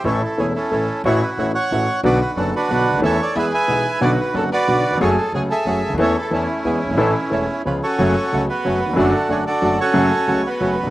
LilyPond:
<<
  \new Staff \with { instrumentName = "Bandoneon" } { \time 3/4 \key a \major \tempo 4 = 182 << { cis''8 a'8 gis'8 a'4. | cis''8 b'8 cis''8 fis''4. | d''8 b'8 a'8 b'4. | e''8 d''8 e''8 gis''4. |
d''8 b'8 a'8 d''4. | cis''8 a'8 gis'8 e''4. | cis''8 a'8 e'2~ | e'2 r8 cis''8~ |
\key fis \minor cis''4. b'4. | a'4 cis''8 d''4 cis''8~ | cis''4. b'4. | } \\ { <e' a'>4. <cis' e'>4. | <e' fis'>4. cis''4. | <fis' b'>4. <d' fis'>4. | <a' cis''>4 <gis' b'>8 <b' e''>4. |
<fis' b'>4. <fis' b'>4. | <gis' a'>4. <gis' a'>4. | <e' a'>4 <a cis'>2~ | <a cis'>2 r8 <fis' a'>8~ |
<fis' a'>4. fis'4. | <d' fis'>4. <fis' a'>4 <fis' a'>8~ | <fis' a'>4. fis'4. | } >> }
  \new Staff \with { instrumentName = "Violin" } { \time 3/4 \key a \major r2. | r2. | r2. | r4 e''8 gis''4. |
d''8 b'8 a'8 d''4. | cis''8 a'8 gis'8 e''4. | cis''8 a'8 e'2~ | e'2 r8 cis'8~ |
\key fis \minor cis'4. b4. | a4 cis'8 d'4 cis'8~ | cis'4. b4. | }
  \new Staff \with { instrumentName = "Bandoneon" } { \time 3/4 \key a \major <a cis' e'>8 r8 <a cis' e'>8 r8 <a cis' e'>8 r8 | <a e' fis'>8 r8 <a e' fis'>8 r8 <a e' fis'>8 r8 | <b d' fis'>8 r8 <b d' fis'>8 r8 <b d' fis'>8 r8 | <cis' e' a'>8 r8 <b e' gis'>8 r8 <b e' gis'>8 r8 |
<b d' fis'>8 r8 <b d' fis'>8 r8 <b d' fis'>8 r8 | <a fis' gis'>8 r8 <a fis' gis'>8 r8 <a fis' gis'>8 r8 | <cis' e' a'>8 r8 <cis' e' a'>8 r8 <b e' gis'>8 r8 | <cis' e' a'>8 r8 <cis' e' a'>8 r8 <cis' eis' b'>8 r8 |
\key fis \minor <a cis' fis'>8 r8 <a cis' fis'>8 r8 <a cis' fis'>8 r8 | <a d' fis'>8 r8 <a d' fis'>8 r8 <a d' fis'>8 r8 | <a cis' fis'>8 r8 <a cis' fis'>8 r8 <a cis' fis'>8 r8 | }
  \new Staff \with { instrumentName = "Grand piano" } { \clef bass \time 3/4 \key a \major <a,, a, e a cis' a'>8 r8 <e,, e, e a cis' a'>8 r8 <a,, a, e a cis' a'>8 r8 | <a,, a, e a cis' fis'>8 r8 <a,, a, e a cis' fis'>8 r8 <a,, a, e a cis' fis'>8 r8 | <b,, b, d fis b fis'>8 r8 <fis,, fis, d fis b fis'>8 r8 <b,, b, d fis b fis'>8 r32 cis,32 d,32 dis,32 | <e, e a cis' a'>8 r8 <e, e gis b gis'>8 r8 <b,, b, e gis b gis'>8 r8 |
<b,, b, d fis b fis'>8 r8 <fis,, fis, d fis b fis'>8 r8 <b,, b, d fis b fis'>8 r32 dis,32 e,32 f,32 | <fis, fis a cis' gis'>8 r8 <cis, cis fis a cis' gis'>8 r8 <fis, fis a cis' gis'>8 r32 cis,32 d,32 dis,32 | <e, e a cis' a'>8 r8 <e, e a cis' a'>8 r8 <e, e gis b gis'>8 r32 fis,,32 g,,32 gis,,32 | <a,, a, e a cis' a'>8 r8 <e,, e, e a cis' a'>8 r8 <cis, cis eis b cis' gis'>8 r8 |
\key fis \minor <fis, cis fis a fis'>8 r8 <cis, cis fis a fis'>8 r8 <fis, cis fis a fis'>8 r32 dis,32 e,32 eis,32 | <fis, d fis a fis'>8 r8 <fis, d fis a fis'>8 r8 <fis, d fis a fis'>8 r8 | <fis, cis fis a fis'>8 r8 <cis, cis fis a fis'>8 r8 <fis, cis fis a fis'>8 r32 ais,,32 b,,32 r32 | }
  \new Staff \with { instrumentName = "Upright bass" } { \clef bass \time 3/4 \key a \major a,,16. r8 r32 e,,16. r8 r32 a,,16. r8 r32 | a,,16. r8 r32 a,,16. r8 r32 a,,16. r8 r32 | b,,16. r8 r32 fis,,16. r8 r32 b,,16. r16 cis,32 d,32 dis,32 | e,16. r8 r32 e,16. r8 r32 b,,16. r8 r32 |
b,,16. r8 r32 fis,,16. r8 r32 b,,16. r8 r32 | fis,,16. r8 r32 cis,16. r8 r32 fis,,16. r16 cis,32 d,32 dis,32 | e,16. r8 r32 e,16. r8 r32 e,16. r16 fis,,32 g,,32 gis,,32 | a,,16. r8 r32 e,,16. r8 r32 cis,16. r8 r32 |
\key fis \minor fis,,16. r8 r32 cis,16. r8 r32 fis,,16. r8 r32 | fis,,16. r8 r32 fis,,16. r8 r32 fis,,16. r8 r32 | fis,,16. r8 r32 cis,16. r8 r32 fis,,16. r16 ais,,32 b,,32 r32 | }
>>